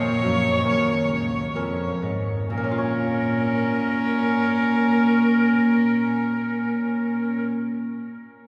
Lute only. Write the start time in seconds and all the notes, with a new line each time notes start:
Already playing: A#2
0.22 F#2
0.64 D#2 A#3 C#4 A#4
1.55 F2 A#3 C#4 A#4
2.02 G#2
2.50 A#2
2.57 A#3
2.64 C#4
2.71 F4
2.78 C#5